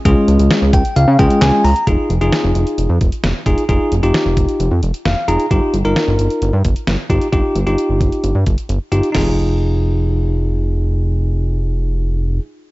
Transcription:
<<
  \new Staff \with { instrumentName = "Tine electric piano" } { \time 4/4 \key f \minor \tempo 4 = 132 << { r4. g''8 f''8 g''8 aes''8 bes''8 | r1 | r2. f''8 bes''8 | r1 |
r1 | r1 | r1 | } \\ { <aes des' f' aes'>4. r4 <aes des' f' aes'>4 r8 | <ees' f' aes'>8 r16 <ees' f' aes'>4. r4 r16 <ees' f' aes'>16 r16 | <ees' f' aes'>8 r16 <ees' f' g'>4. r4 r16 <ees' f' aes'>16 r16 | <ees' f' g'>8 r16 <ees' f' bes'>4. r4 r16 <ees' f' g'>16 r16 |
<ees' f' g'>8 r16 <ees' f' g'>4. r4 r16 <ees' f' g'>16 r16 | <ees' f' aes'>1~ | <ees' f' aes'>1 | } >> }
  \new Staff \with { instrumentName = "Analog synth bass" } { \clef bass \time 4/4 \key f \minor des,16 r16 des,16 des,16 r16 des,16 des,16 r16 des,16 des16 des,16 r16 des,16 r16 des,16 r16 | f,,16 r16 f,,16 f,,16 r16 f,,16 f,,16 r16 f,,16 f,16 f,,16 r16 f,,16 r16 f,,16 r16 | f,,16 r16 f,,16 f,,16 r16 f,,16 f,,16 r16 f,,16 f,16 f,,16 r16 f,,16 r16 f,,16 r16 | g,,16 r16 g,,16 g,,16 r16 g,,16 g,,16 r16 g,,16 g,16 g,,16 r16 g,,16 r16 g,,16 r16 |
g,,16 r16 g,,16 g,,16 r16 g,,16 g,,16 r16 g,,16 g,16 g,,16 r16 g,,16 r16 g,,16 r16 | f,,1~ | f,,1 | }
  \new DrumStaff \with { instrumentName = "Drums" } \drummode { \time 4/4 <hh bd>8 hh16 hh16 <hh sn>8 <hh bd>16 hh16 hh8 <hh bd>16 hh16 <hc hh sn>8 hho16 hh16 | <hh bd>8 hh16 hh16 <hh sn>8 hh16 hh16 hh8 <hh bd>16 hh16 <hh sn>8 <hh bd>16 hh16 | <hh bd>8 hh16 hh16 <hh sn>8 <hh bd>16 hh16 hh8 hh16 hh16 <hh sn>8 hh16 hh16 | <hh bd>8 hh16 hh16 <hh sn>8 hh16 hh16 hh8 <hh bd>16 hh16 <hh sn>8 <hh bd>16 hh16 |
<hh bd>8 hh16 hh16 hh8 <hh bd>16 hh16 hh8 <hh bd>16 hh16 hh8 hh16 hh16 | <cymc sn tomfh>4 r4 r4 r4 | r4 r4 r4 r4 | }
>>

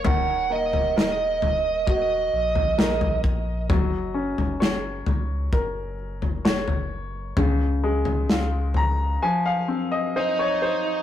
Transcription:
<<
  \new Staff \with { instrumentName = "Lead electric guitar" } { \time 4/4 \key ges \lydian \tempo 4 = 65 ges''8 ees''8 ees''4 ees''4. r8 | r1 | r2. <ees' ees''>4 | }
  \new Staff \with { instrumentName = "Upright piano" } { \time 4/4 \key ges \lydian << { r1 | r1 | r4. bes''8 aes''16 f''8 ees''16 ees''16 des''16 c''8 | } \\ { ees8 bes8 bes'4 ges'4 bes'4 | ges8 des'8 des''4 bes'4 des''4 | des8 aes8 f'4 f8 c'8 c''4 | } >> }
  \new Staff \with { instrumentName = "Sub bass" } { \clef bass \time 4/4 \key ges \lydian ees,,4 ees,,4. bes,,4. | ges,,8. ges,,8. des,8 ges,,4 ges,,4 | des,4 des,4 r2 | }
  \new DrumStaff \with { instrumentName = "Drums" } \drummode { \time 4/4 <bd tomfh>8. tomfh16 sn8 tomfh8 bd8. tomfh16 sn16 tomfh16 bd8 | <bd tomfh>8. tomfh16 sn8 tomfh8 bd8. tomfh16 sn16 tomfh8. | <bd tomfh>8. tomfh16 sn8 tomfh8 r4 r4 | }
>>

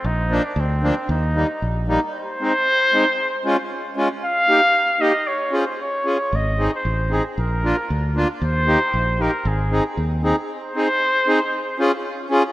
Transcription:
<<
  \new Staff \with { instrumentName = "Trumpet" } { \time 2/4 \key ees \major \tempo 4 = 115 ees'8. d'16 c'4 | ees'4. r8 | \key aes \major c''2~ | c''4. r8 |
f''4. ees''8 | des''8 c''8 des''4 | ees''8. c''8. aes'8 | bes'4. r8 |
c''4. bes'8 | aes'4 r4 | c''2~ | c''4. r8 | }
  \new Staff \with { instrumentName = "Accordion" } { \time 2/4 \key ees \major r8 <f bes d'>8 r8 <f bes d'>8 | r8 <g bes ees'>8 r8 <g bes ees'>8 | \key aes \major r8 <aes c' ees'>8 r8 <aes c' ees'>8 | r8 <aes des' f'>8 r8 <aes des' f'>8 |
r8 <bes ees' g'>8 r8 <bes ees' g'>8 | r8 <des' f' aes'>8 r8 <des' f' aes'>8 | r8 <c' ees' aes'>8 r8 <c' ees' aes'>8 | r8 <bes d' f'>8 r8 <bes d' f'>8 |
r8 <bes ees' g'>8 r8 <bes ees' g'>8 | r8 <c' ees' aes'>8 r8 <c' ees' aes'>8 | r8 <c' ees' aes'>8 r8 <c' ees' aes'>8 | r8 <des' f' aes'>8 r8 <des' f' aes'>8 | }
  \new Staff \with { instrumentName = "Fingered electric bass" } { \clef bass \time 2/4 \key ees \major bes,,4 d,4 | ees,4 bes,,4 | \key aes \major r2 | r2 |
r2 | r2 | aes,,4 a,,4 | bes,,4 d,4 |
ees,4 bes,,4 | aes,,4 ees,4 | r2 | r2 | }
>>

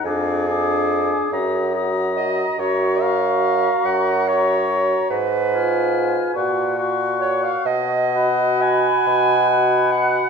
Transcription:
<<
  \new Staff \with { instrumentName = "Flute" } { \time 6/8 \key ges \major \tempo 4. = 47 d'''8 d'''4 ees'''8 ees'''4 | des'''8 des'''4. des'''4 | r8 f'''4 des'''8 des'''4 | r8 b''4. b''4 | }
  \new Staff \with { instrumentName = "Oboe" } { \time 6/8 \key ges \major aes''8 aes''4 bes''8 bes''4 | bes''8 bes''4. bes''4 | r8 aes''4 ges''8 ges''4 | r8 fis''4. fis''4 | }
  \new Staff \with { instrumentName = "Clarinet" } { \time 6/8 \key ges \major aes'2 r8 ees''8 | des''8 f''4 ges''8 des''4 | ces''2 r8 des''16 f''16 | dis''4 aes''4. fis''8 | }
  \new Staff \with { instrumentName = "French horn" } { \time 6/8 \key ges \major d'8 d'4 ges'8 ges'4 | ges'8 ges'4. ges'4 | r8 f'4 ges'8 ges'4 | r8 fis'4. fis'4 | }
  \new Staff \with { instrumentName = "Bassoon" } { \clef bass \time 6/8 \key ges \major f,4. ges,4. | ges,4. ges,4. | aes,4. bes,4. | b,4. b,4. | }
>>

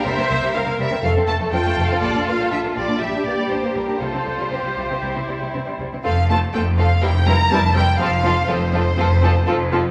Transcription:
<<
  \new Staff \with { instrumentName = "Violin section" } { \time 4/4 \key f \major \tempo 4 = 122 e''4 f''8 e''8 f''8 a''8 \tuplet 3/2 { g''4 f''8 } | d''8 f''8 e''8 d''8 e''8 d''8 c''8 bes'8 | a'4 g'2 r4 | f''8 a''8 g''8 f''8 g''8 bes''8 a''8 g''8 |
f''4 c''2~ c''8 r8 | }
  \new Staff \with { instrumentName = "Violin section" } { \time 4/4 \key f \major << { bes'2 a'2~ | a'2 g'2 | f'2 e'4. r8 | <f' a'>8 <f' a'>8 <f' a'>8 <f' a'>8 <e' bes'>8 <e' bes'>8 <e' bes'>8 <e' bes'>8 |
<f' a'>8 <f' a'>8 <f' a'>8 <f' a'>8 <f' a'>8 <f' a'>8 <f' a'>8 <f' a'>8 | } \\ { g16 c'16 bes16 g16 c'16 bes16 g16 c'16 a16 c'16 a16 a16 c'16 a16 a16 c'16 | g16 d'16 bes16 g16 d'16 bes16 g16 d'16 g16 d'16 bes16 g16 d'16 bes16 g16 d'16 | g16 c'16 g16 g16 c'16 g16 g16 c'16 g16 c'16 g16 g16 c'16 g16 g16 c'16 | r1 |
r1 | } >> }
  \new Staff \with { instrumentName = "Viola section" } { \time 4/4 \key f \major c''4 bes'4 a'4 f'4~ | f'2 g'4 g'4 | c''2.~ c''8 r8 | <a c'>8 <a c'>8 <a c'>8 <a c'>8 <g c'>8 <g c'>8 <g c'>8 <g c'>8 |
<f c'>8 <f c'>8 <f c'>8 <f c'>8 <f c'>8 <f c'>8 <f c'>8 <f c'>8 | }
  \new Staff \with { instrumentName = "Cello section" } { \clef bass \time 4/4 \key f \major c16 c16 c16 c16 c16 c16 c16 c16 f,16 f,16 f,16 f,16 f,16 f,16 f,16 f,16 | bes,16 bes,16 bes,16 bes,16 bes,16 bes,16 bes,16 bes,16 bes,16 bes,16 bes,16 bes,16 bes,16 bes,16 bes,16 bes,16 | c16 c16 c16 c16 c16 c16 c16 c16 c16 c16 c16 c16 c16 c16 c16 c16 | f,4 f,4 f,4 f,4 |
f,4 f,4 f,4 f,4 | }
  \new Staff \with { instrumentName = "Double bass section" } { \clef bass \time 4/4 \key f \major c,16 r16 c,16 r16 c,16 r16 c,16 r16 f,,16 r16 f,,16 r16 f,,16 r16 f,,16 r16 | bes,,16 r16 bes,,16 r16 bes,,16 r16 bes,,16 r16 bes,,16 r16 bes,,16 r16 bes,,16 r16 bes,,16 r16 | c,16 r16 c,16 r16 c,16 r16 c,16 r16 c,16 r16 c,16 r16 c,16 r16 c,16 r16 | f,,4 f,,4 f,,4 f,,4 |
f,,4 f,,4 f,,4 f,,4 | }
>>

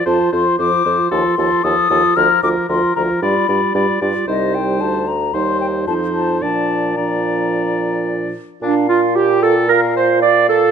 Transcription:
<<
  \new Staff \with { instrumentName = "Flute" } { \time 4/4 \key bes \major \tempo 4 = 113 a''8 c'''8 d'''4 c'''4 ees'''4 | f'''8 d'''8 c'''8 bes''8 b''4. r8 | ees''8 g''8 a''8 bes''8 c'''8 g''8 a''8 a''8 | a''4 bes''2 r4 |
f''4 g''4 f''2 | }
  \new Staff \with { instrumentName = "Oboe" } { \time 4/4 \key bes \major c''8 c''8 c''8 c''8 a'8 a'8 a'8 a'8 | bes'8 bes'8 bes'8 bes'8 d''8 d''8 d''8 d''8 | c''2 c''4 c''4 | d''4 d''2~ d''8 r8 |
d'8 f'8 g'8 a'8 bes'8 c''8 d''8 a'8 | }
  \new Staff \with { instrumentName = "Clarinet" } { \time 4/4 \key bes \major f'8 f'8 f'8 f'8 f'8 f'8 f'8 f'8 | f'8 f'8 f'8 f'8 f'8 f'8 f'8 f'8 | ees'2 ees'4 ees'4 | d'4 d'2~ d'8 r8 |
d'8 f'8 g'8 a'8 bes'8 c''8 d''8 a'8 | }
  \new Staff \with { instrumentName = "French horn" } { \clef bass \time 4/4 \key bes \major f8 f8 f8 f8 f8 f8 f8 f8 | f8 f8 f8 f8 g8 g8 g8 g8 | g2 g4 f4 | f4 f2~ f8 r8 |
f'2 f'4 f'4 | }
  \new Staff \with { instrumentName = "Bassoon" } { \clef bass \time 4/4 \key bes \major f,8 f,8 f,8 f,8 ees,8 ees,8 ees,8 ees,8 | d,8 d,8 d,8 d,8 g,8 g,8 g,8 g,8 | c,4 d,4 ees,4 f,4 | bes,2.~ bes,8 r8 |
bes,1 | }
>>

